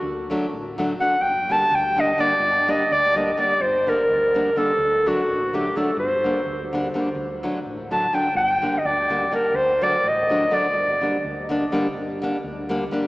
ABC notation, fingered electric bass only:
X:1
M:5/8
L:1/8
Q:1/4=126
K:Gm
V:1 name="Fingered electric bass" clef=bass
D,,2 A,,,3 | G,,,2 D,,3 | G,,,2 D,,3 | G,,,2 D,,3 |
D,,2 A,,,3 | G,,,2 D,,3 | D,,2 A,,,3 | G,,,2 D,,3 |
D,,2 A,,,3 | G,,,2 D,,3 | G,,,2 D,,3 |]